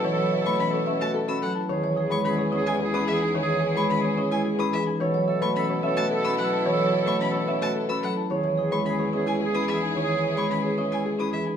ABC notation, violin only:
X:1
M:3/4
L:1/16
Q:1/4=109
K:E
V:1 name="Violin"
z3 c' b z2 a z e' f z | z3 c' b z2 g z d' e z | z3 c' b z2 g z d' e z | z3 c' b z2 a z e' f z |
z3 c' b z2 a z e' f z | z3 c' b z2 g z d' e z | z3 c' b z2 g z d' e z |]